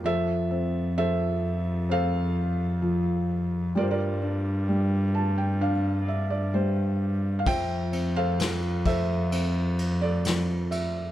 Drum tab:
RD |--------|--------|xxxxxxxx|
SD |--------|--------|--o---o-|
BD |--------|--------|o--o----|